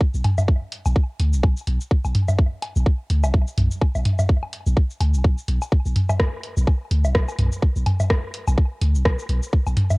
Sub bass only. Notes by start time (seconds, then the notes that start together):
0.14 B1
0.86 B1
1.20 D2
1.33 B1
1.43 B1
1.67 B1
2.05 B1
2.76 B1
3.10 D2
3.24 B1
3.34 B1
3.58 B1
3.95 B1
4.67 B1
5.00 D2
5.14 B1
5.24 B1
5.48 B1
5.86 B1
6.57 B1
6.91 D2
7.05 B1
7.15 B1
7.39 B1
7.76 B1
8.48 B1
8.82 D2
8.95 B1
9.05 B1
9.29 B1
9.67 B1